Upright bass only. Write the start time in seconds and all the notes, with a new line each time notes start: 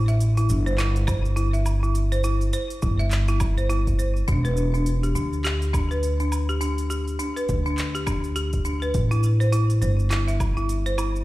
Already playing: A1
0.49 G1
2.83 G1
4.28 E1
5.15 D2
7.49 D2
8.95 A1
9.82 G1